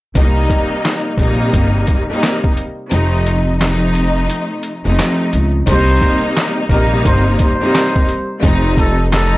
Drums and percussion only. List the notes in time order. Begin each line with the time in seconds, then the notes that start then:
0.15 kick, closed hi-hat
0.50 kick, closed hi-hat
0.85 snare, clap, closed hi-hat
1.18 kick, closed hi-hat
1.53 kick, closed hi-hat
1.87 kick, closed hi-hat
2.23 snare, clap, closed hi-hat
2.44 kick
2.57 closed hi-hat
2.91 closed hi-hat
3.26 closed hi-hat
3.61 snare, clap, closed hi-hat
3.95 closed hi-hat
4.30 closed hi-hat
4.63 closed hi-hat
4.99 snare, clap, closed hi-hat
5.33 closed hi-hat
5.67 kick, closed hi-hat
6.02 kick, closed hi-hat
6.37 snare, clap, closed hi-hat
6.69 kick, closed hi-hat
7.05 kick, closed hi-hat
7.39 kick, closed hi-hat
7.75 snare, clap, closed hi-hat
7.96 kick
8.09 closed hi-hat
8.43 kick, closed hi-hat
8.77 kick, closed hi-hat
9.12 snare, clap, closed hi-hat